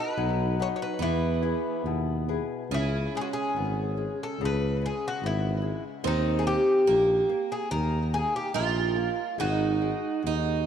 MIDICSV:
0, 0, Header, 1, 5, 480
1, 0, Start_track
1, 0, Tempo, 846262
1, 566, Time_signature, 2, 2, 24, 8
1, 2018, Tempo, 836820
1, 6094, End_track
2, 0, Start_track
2, 0, Title_t, "Bouzouki"
2, 0, Program_c, 0, 25
2, 0, Note_on_c, 0, 71, 92
2, 312, Note_off_c, 0, 71, 0
2, 352, Note_on_c, 0, 73, 80
2, 380, Note_off_c, 0, 73, 0
2, 431, Note_on_c, 0, 73, 51
2, 454, Note_off_c, 0, 73, 0
2, 466, Note_on_c, 0, 71, 66
2, 578, Note_off_c, 0, 71, 0
2, 581, Note_on_c, 0, 64, 80
2, 1275, Note_off_c, 0, 64, 0
2, 1556, Note_on_c, 0, 64, 83
2, 1796, Note_off_c, 0, 64, 0
2, 1797, Note_on_c, 0, 68, 77
2, 1823, Note_on_c, 0, 66, 61
2, 1826, Note_off_c, 0, 68, 0
2, 1861, Note_off_c, 0, 66, 0
2, 1891, Note_on_c, 0, 68, 72
2, 2373, Note_off_c, 0, 68, 0
2, 2405, Note_on_c, 0, 69, 70
2, 2516, Note_off_c, 0, 69, 0
2, 2532, Note_on_c, 0, 71, 91
2, 2761, Note_off_c, 0, 71, 0
2, 2763, Note_on_c, 0, 68, 69
2, 2873, Note_off_c, 0, 68, 0
2, 2889, Note_on_c, 0, 66, 78
2, 2993, Note_off_c, 0, 66, 0
2, 2995, Note_on_c, 0, 64, 78
2, 3317, Note_off_c, 0, 64, 0
2, 3461, Note_on_c, 0, 63, 90
2, 3642, Note_on_c, 0, 68, 61
2, 3659, Note_off_c, 0, 63, 0
2, 3684, Note_off_c, 0, 68, 0
2, 3688, Note_on_c, 0, 67, 78
2, 4287, Note_off_c, 0, 67, 0
2, 4289, Note_on_c, 0, 68, 70
2, 4398, Note_off_c, 0, 68, 0
2, 4400, Note_on_c, 0, 70, 91
2, 4626, Note_off_c, 0, 70, 0
2, 4646, Note_on_c, 0, 68, 76
2, 4758, Note_off_c, 0, 68, 0
2, 4772, Note_on_c, 0, 67, 71
2, 4881, Note_off_c, 0, 67, 0
2, 4884, Note_on_c, 0, 70, 75
2, 5224, Note_off_c, 0, 70, 0
2, 5372, Note_on_c, 0, 66, 83
2, 6094, Note_off_c, 0, 66, 0
2, 6094, End_track
3, 0, Start_track
3, 0, Title_t, "Twelve-string acoustic guitar"
3, 0, Program_c, 1, 25
3, 0, Note_on_c, 1, 63, 88
3, 561, Note_on_c, 1, 59, 68
3, 593, Note_off_c, 1, 63, 0
3, 1265, Note_off_c, 1, 59, 0
3, 1539, Note_on_c, 1, 61, 79
3, 3443, Note_on_c, 1, 60, 88
3, 3508, Note_off_c, 1, 61, 0
3, 3900, Note_off_c, 1, 60, 0
3, 3919, Note_on_c, 1, 58, 85
3, 4877, Note_on_c, 1, 65, 85
3, 4912, Note_off_c, 1, 58, 0
3, 5366, Note_off_c, 1, 65, 0
3, 5368, Note_on_c, 1, 63, 80
3, 5833, Note_off_c, 1, 63, 0
3, 5866, Note_on_c, 1, 63, 83
3, 6094, Note_off_c, 1, 63, 0
3, 6094, End_track
4, 0, Start_track
4, 0, Title_t, "Nylon-string guitar"
4, 0, Program_c, 2, 24
4, 0, Note_on_c, 2, 66, 46
4, 0, Note_on_c, 2, 71, 45
4, 0, Note_on_c, 2, 75, 53
4, 99, Note_on_c, 2, 54, 67
4, 239, Note_off_c, 2, 75, 0
4, 240, Note_off_c, 2, 66, 0
4, 241, Note_off_c, 2, 71, 0
4, 338, Note_on_c, 2, 66, 47
4, 339, Note_on_c, 2, 71, 41
4, 342, Note_on_c, 2, 75, 49
4, 524, Note_off_c, 2, 66, 0
4, 524, Note_off_c, 2, 71, 0
4, 524, Note_off_c, 2, 75, 0
4, 554, Note_off_c, 2, 54, 0
4, 577, Note_on_c, 2, 52, 65
4, 808, Note_on_c, 2, 64, 44
4, 810, Note_on_c, 2, 68, 41
4, 812, Note_on_c, 2, 71, 48
4, 1037, Note_off_c, 2, 52, 0
4, 1054, Note_on_c, 2, 47, 51
4, 1195, Note_off_c, 2, 64, 0
4, 1197, Note_off_c, 2, 68, 0
4, 1197, Note_off_c, 2, 71, 0
4, 1296, Note_on_c, 2, 64, 42
4, 1299, Note_on_c, 2, 68, 37
4, 1299, Note_on_c, 2, 71, 42
4, 1490, Note_off_c, 2, 64, 0
4, 1491, Note_off_c, 2, 68, 0
4, 1491, Note_off_c, 2, 71, 0
4, 1525, Note_off_c, 2, 47, 0
4, 1539, Note_on_c, 2, 49, 63
4, 1787, Note_on_c, 2, 56, 46
4, 2016, Note_off_c, 2, 56, 0
4, 2021, Note_on_c, 2, 59, 49
4, 2254, Note_off_c, 2, 59, 0
4, 2255, Note_on_c, 2, 56, 44
4, 2479, Note_off_c, 2, 49, 0
4, 2490, Note_off_c, 2, 56, 0
4, 2506, Note_on_c, 2, 49, 66
4, 2740, Note_on_c, 2, 56, 51
4, 2969, Note_off_c, 2, 56, 0
4, 2981, Note_on_c, 2, 59, 51
4, 3201, Note_on_c, 2, 56, 50
4, 3207, Note_off_c, 2, 59, 0
4, 3429, Note_off_c, 2, 49, 0
4, 3436, Note_off_c, 2, 56, 0
4, 3441, Note_on_c, 2, 51, 72
4, 3686, Note_on_c, 2, 58, 57
4, 3916, Note_off_c, 2, 51, 0
4, 3918, Note_off_c, 2, 58, 0
4, 3923, Note_on_c, 2, 51, 49
4, 4157, Note_off_c, 2, 51, 0
4, 4161, Note_on_c, 2, 58, 56
4, 4396, Note_off_c, 2, 58, 0
4, 4409, Note_on_c, 2, 51, 71
4, 4642, Note_on_c, 2, 58, 52
4, 4874, Note_off_c, 2, 51, 0
4, 4877, Note_off_c, 2, 58, 0
4, 4881, Note_on_c, 2, 51, 47
4, 5116, Note_off_c, 2, 51, 0
4, 5118, Note_on_c, 2, 58, 48
4, 5357, Note_off_c, 2, 58, 0
4, 5359, Note_on_c, 2, 56, 58
4, 5601, Note_off_c, 2, 56, 0
4, 5608, Note_on_c, 2, 56, 49
4, 5835, Note_off_c, 2, 56, 0
4, 5842, Note_on_c, 2, 56, 45
4, 6083, Note_off_c, 2, 56, 0
4, 6094, End_track
5, 0, Start_track
5, 0, Title_t, "Tuba"
5, 0, Program_c, 3, 58
5, 99, Note_on_c, 3, 35, 94
5, 404, Note_off_c, 3, 35, 0
5, 565, Note_on_c, 3, 40, 87
5, 877, Note_off_c, 3, 40, 0
5, 1041, Note_on_c, 3, 39, 74
5, 1360, Note_off_c, 3, 39, 0
5, 1532, Note_on_c, 3, 37, 87
5, 1748, Note_off_c, 3, 37, 0
5, 2014, Note_on_c, 3, 32, 78
5, 2328, Note_off_c, 3, 32, 0
5, 2498, Note_on_c, 3, 37, 91
5, 2808, Note_off_c, 3, 37, 0
5, 2975, Note_on_c, 3, 32, 89
5, 3283, Note_off_c, 3, 32, 0
5, 3443, Note_on_c, 3, 39, 97
5, 3755, Note_off_c, 3, 39, 0
5, 3917, Note_on_c, 3, 34, 95
5, 4133, Note_off_c, 3, 34, 0
5, 4403, Note_on_c, 3, 39, 90
5, 4716, Note_off_c, 3, 39, 0
5, 4881, Note_on_c, 3, 34, 81
5, 5197, Note_off_c, 3, 34, 0
5, 5363, Note_on_c, 3, 32, 86
5, 5682, Note_off_c, 3, 32, 0
5, 5852, Note_on_c, 3, 39, 78
5, 6094, Note_off_c, 3, 39, 0
5, 6094, End_track
0, 0, End_of_file